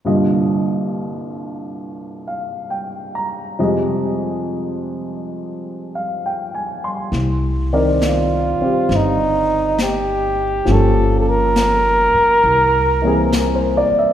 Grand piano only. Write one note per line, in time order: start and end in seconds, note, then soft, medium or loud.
0.05 3.59 C2 soft
0.05 3.59 G2 soft
0.05 3.59 D3 soft
0.05 3.59 A#3 soft
0.05 3.59 F4 soft
0.05 3.59 D#5 soft
2.27 2.89 F5 soft
2.70 3.40 G5 soft
3.15 3.77 A#5 soft
3.59 7.12 F2 soft
3.59 7.12 C3 soft
3.59 7.13 G3 soft
3.59 7.13 G#3 soft
3.59 7.13 D#5 soft
5.95 6.40 F5 soft
6.26 6.80 G5 soft
6.55 7.00 G#5 soft
6.84 7.29 C6 soft
7.73 10.67 D#3 soft
7.73 8.60 C4 soft
7.73 10.67 A#4 soft
7.73 10.67 D5 soft
8.62 10.67 C4 soft
8.62 10.68 G4 soft
10.65 12.42 F3 soft
10.65 12.43 A#3 soft
10.65 12.44 C#4 soft
10.70 12.45 G4 soft
13.02 14.13 E3 soft
13.02 14.13 A#3 soft
13.02 14.13 C4 soft
13.06 14.13 G#4 soft
13.33 13.73 A#4 soft
13.55 13.92 C5 soft
13.77 14.04 D5 soft
13.99 14.13 E5 soft